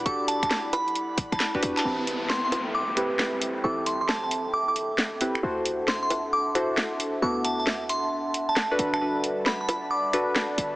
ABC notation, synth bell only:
X:1
M:4/4
L:1/16
Q:"Swing 16ths" 1/4=134
K:Ador
V:1 name="Synth bell"
d' z a a z2 b4 z a a z2 a | z4 c' c' z2 d' z6 z | d' z c' c' a a z2 d' d' z6 | z4 c' c' z2 d' z6 z |
d' z a a z2 c'4 z a z3 a- | a3 z b b z2 d' z6 z |]